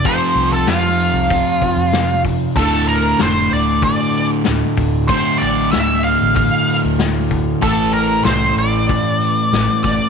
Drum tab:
HH |oooooooo|oooooooo|oooooooo|oooooooo|
SD |--o---o-|--o---o-|--o---o-|--o---oo|
BD |o---oo-o|o---o--o|o---o--o|o---o--o|